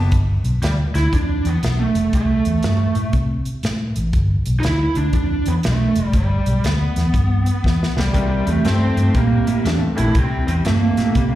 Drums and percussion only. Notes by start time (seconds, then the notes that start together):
0.12 kick, closed hi-hat
0.44 closed hi-hat
0.62 snare, closed hi-hat
0.95 snare, closed hi-hat
1.13 kick, closed hi-hat
1.45 closed hi-hat
1.63 snare, closed hi-hat
1.95 closed hi-hat
2.13 kick, closed hi-hat
2.45 closed hi-hat
2.63 snare, closed hi-hat
2.95 closed hi-hat
3.13 kick, closed hi-hat
3.45 closed hi-hat
3.63 snare, closed hi-hat
3.96 closed hi-hat
4.13 kick, closed hi-hat
4.46 closed hi-hat
4.63 snare, closed hi-hat
4.95 closed hi-hat
5.13 kick, closed hi-hat
5.46 closed hi-hat
5.63 snare, closed hi-hat
5.96 closed hi-hat
6.13 kick, closed hi-hat
6.46 closed hi-hat
6.64 snare, closed hi-hat
6.96 snare, closed hi-hat
7.14 kick, closed hi-hat
7.46 closed hi-hat
7.64 kick, snare
7.83 snare
7.99 snare
8.14 kick, closed hi-hat
8.47 closed hi-hat
8.65 snare, closed hi-hat
8.97 closed hi-hat
9.15 kick, closed hi-hat
9.47 closed hi-hat
9.66 snare, closed hi-hat
9.98 closed hi-hat
10.15 kick, closed hi-hat
10.48 closed hi-hat
10.65 snare, closed hi-hat
10.97 snare, closed hi-hat
11.15 kick, closed hi-hat